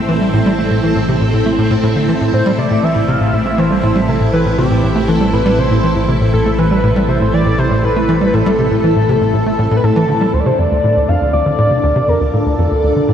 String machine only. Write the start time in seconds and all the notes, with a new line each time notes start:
Already playing: A3 C4 E4 A4
10.34 D4
10.52 D5
10.59 A4
12.18 F4